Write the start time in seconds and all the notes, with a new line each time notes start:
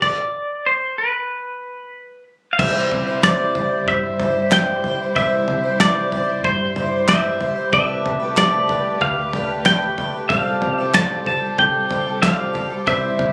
0.02 D5, kick, crash
0.66 C5
0.98 B4
2.53 F5
2.58 C2 C3 E3 G3 C4 E4 C5 E5, kick, floor tom, crash
2.91 C2, floor tom
3.07 G3 C4 E4 C5
3.23 C3 E3 G3 C4 E4 C5 D5, kick, snare, clap, floor tom
3.55 G3 C4 E4 C5, floor tom
3.87 G2 E5, kick, floor tom
4.20 G3 C4 E4 C5, floor tom
4.51 C3 E3 G3 C4 E4 C5 G5, kick, snare, clap, floor tom
4.84 G3 C4 E4 C5, floor tom
5.01 G3 C4 E4 C5
5.16 C2 C3 E3 G3 C4 E4 C5 E5, kick, floor tom
5.48 C2, floor tom
5.64 G3 C4 E4 C5
5.80 C3 E3 G3 C4 E4 C5 D5, kick, snare, clap, floor tom
6.12 G3 C4 E4 C5, floor tom
6.44 G2 C5, kick, floor tom
6.76 G3 C4 E4 C5, floor tom
7.08 C3 E3 G3 C4 E4 C5 E5, kick, snare, clap, floor tom
7.40 G3 C4 E4 C5, floor tom
7.56 G3 C4 E4 C5
7.72 C2 C3 G3 A3 D4 G4 B4 E5, kick, floor tom
8.05 C2, floor tom
8.20 A3 D4 G4 B4
8.36 C3 G3 A3 D4 G4 B4 D5, kick, snare, clap, floor tom
8.68 A3 D4 G4 B4, floor tom
9.01 D2 F5, kick, floor tom
9.33 A3 D4 G4 B4, floor tom
9.65 C3 G3 A3 D4 G4 B4 G5, kick, snare, clap, floor tom
9.80 A3 D4 G4 B4
9.98 A3 D4 G4 B4, floor tom
10.14 A3 D4 G4 B4
10.29 C2 C3 F3 G3 C4 F4 G4 A4 F5, kick, floor tom
10.62 C2, floor tom
10.76 G4 A4 E5
10.80 G3 C4
10.93 C3 F3 G3 C4 G4 A4 A5, kick, snare, clap, floor tom
11.26 G3 C4 G4 A4 A5, floor tom
11.58 C2 G5, kick, floor tom
11.89 G3 C4 G4 A4, floor tom
12.06 G3 C4 G4 A4
12.22 C3 F3 G3 C4 G4 A4 F5, kick, snare, clap, floor tom
12.53 G3 C4 G4 A4, floor tom
12.70 G3 C4 G4 A4
12.86 C2 C3 E3 G3 C4 E4 C5 E5, kick, floor tom
13.19 C2, floor tom